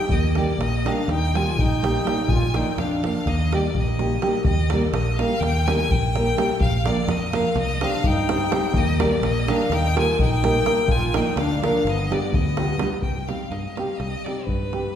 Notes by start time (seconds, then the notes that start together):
Already playing: G5
0.09 D#2 A#3 D#5, davul low
0.35 G3 A#3 D#4 G4 D5, davul high
0.48 davul high
0.58 A#1 A#3 D#5, davul high
0.85 G3 A#3 D4 D#4 G4 F5, davul high
1.08 D#2 D#4 G5, davul high
1.34 G3 A#3 D#4 F4 G4 G#5, davul high
1.56 A#1 D#4 G5, davul low
1.81 G3 A#3 D#4 G4, davul high
1.95 davul high
2.04 G3 A#3 D#4 G4, davul high
2.18 davul high
2.28 A#1 F4 G#5, davul low
2.42 davul high
2.54 F3 A#3 D4 D#4 F4 G5, davul high
2.67 davul high
2.77 F2 D4 F5, davul high
3.02 F3 A#3 D4 F4 F5, davul high
3.15 davul high
3.26 D#2 A#3 D#5, davul high, davul low
3.39 davul high
3.52 G3 A#3 D#4 G4 D5, davul high
3.64 davul high
3.75 A#1 A#3, davul low
3.80 D#5
3.88 davul high
3.99 G3 A#3 D#4 G4, davul high
4.22 G3 A#3 D#4 G4, davul high
4.34 davul high
4.44 D#2 D#5, davul low
4.70 G3 A#3 D#4 G4 A#4 D5, davul high
4.82 davul high
4.92 A#1 D#5, davul high
5.16 G3 A#3 D#4 G4 F5, davul high
5.21 A#4
5.40 D#2 G5, davul high
5.66 G3 A#3 D#4 G4 G#5, davul high
5.70 A#4 G5
5.78 G#5, davul high
5.89 A#1 G5, davul low
6.15 G3 A#3 D#4 G4 A#4, davul high
6.27 davul high
6.37 G3 A#3 D#4 G4 A#4, davul high
6.60 A#1 F5, davul low
6.85 F3 A#3 D4 F4 A#4 D5, davul high
6.98 davul high
7.08 F2 D#5, davul high
7.33 F3 A#3 D4 F4 A#4 F5, davul high
7.55 C2 D#5, davul high
7.81 G3 C4 D4 D#4 G4 C5 F5, davul high
7.93 davul high
8.04 G2 D#4 G5, davul low
8.29 G3 C4 D#4 G4 C5, davul high
8.41 davul high
8.50 G3 C4 D#4 G4 C5, davul high
8.63 davul high
8.73 D#2 A#3 D#5, davul low
8.99 G3 A#3 D#4 G4 A#4 D5, davul high
9.12 davul high
9.21 A#1 A#3, davul high
9.25 D#5
9.47 G3 A#3 D4 D#4 G4 A#4 F5, davul high
9.69 D#2 D#4, davul high
9.74 G5
9.95 G3 A#3 D#4 F4 G4 A#4 G#5, davul high
10.09 davul high
10.19 A#1 D#4 G5, davul low
10.42 G3 A#3 D#4 G4 A#4, davul high
10.56 davul high
10.65 G3 A#3 D#4 G4 A#4, davul high
10.78 davul high
10.88 A#1 F4 G#5, davul low
11.02 davul high
11.13 F3 A#3 D4 D#4 F4 A#4 G5, davul high
11.27 davul high
11.36 D2 D4 F5, davul high
11.51 davul high
11.62 F3 A#3 D4 F4 A#4 F5, davul high
11.76 davul high
11.85 G1 B3, davul high
11.89 D#5
11.99 davul high
12.10 G3 B3 D4 F4 G4 D5, davul high
12.23 davul high
12.33 D2 B3 D#5, davul low
12.46 davul high
12.57 G3 B3 D4 F4 G4, davul high
12.69 davul high
12.79 G3 B3 D4 F4 G4, davul high
13.02 C2 G5, davul low
13.16 davul high
13.28 G3 C4 D#4 G4 F5, davul high
13.40 davul high
13.51 G2 D#5, davul high
13.75 G3 C4 D#4 G4 F5, davul high
13.97 C2 D#5, davul high
14.24 G3 C4 D#4 G4 D5, davul high
14.45 G2 B4, davul low
14.72 G3 C4 D#4 G4, davul high